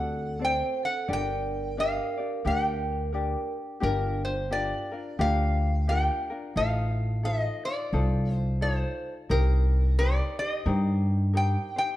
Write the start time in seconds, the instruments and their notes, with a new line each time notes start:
Already playing: upright bass D2, ukulele C4 F#4 A4 D5, vibraphone A4, resonator guitar played with a steel bar F#5
0.39 ukulele C4 A4 D5, vibraphone C5
0.45 resonator guitar played with a steel bar G5
0.83 vibraphone A4, resonator guitar played with a steel bar F#5
1.08 upright bass G1, ukulele D4 G4 A#4 D5, vibraphone A#4
1.13 resonator guitar played with a steel bar G5
1.77 ukulele D4 G4 A#4 D5, vibraphone A#4, resonator guitar played with a steel bar F5
2.18 ukulele D4 G4 D5
2.45 upright bass D2, ukulele D4 G4 A#4 D5, vibraphone A#4, resonator guitar played with a steel bar G5
3.12 ukulele D4 G4 A#4 D5
3.80 upright bass G1, ukulele D4 F4 G4 A#4, resonator guitar played with a steel bar A#4
4.25 resonator guitar played with a steel bar C5
4.51 ukulele D4 F4 G4 A#4, resonator guitar played with a steel bar D5
4.92 ukulele D4 F4 A#4
5.19 upright bass D2, ukulele D4 F4 G4 A#4, resonator guitar played with a steel bar F5
5.88 ukulele D4 F4 G4 A#4, resonator guitar played with a steel bar G5
6.30 ukulele D4 F4 A#4
6.56 upright bass A1, ukulele D#4 F4 A4 C5, resonator guitar played with a steel bar F5
7.23 ukulele D#4 F4 A4 C5, resonator guitar played with a steel bar D#5
7.65 ukulele D#4 F4 C5, resonator guitar played with a steel bar D5
7.93 upright bass C2, ukulele D#4 F4 A4 C5
8.34 resonator guitar played with a steel bar C5
8.61 ukulele D#4 F4 A4 C5, resonator guitar played with a steel bar C5
9.29 upright bass C2, ukulele D#4 G4 A#4 C5, resonator guitar played with a steel bar A#4
9.98 ukulele D#4 G4 A#4 C5, resonator guitar played with a steel bar D5
10.39 ukulele D#4 G4 C5, resonator guitar played with a steel bar D#5
10.66 upright bass G2, ukulele D#4 G4 A#4 C5
11.33 ukulele D#4 G4 A#4 C5, resonator guitar played with a steel bar G5
11.76 ukulele D#4 G4 C5, resonator guitar played with a steel bar G5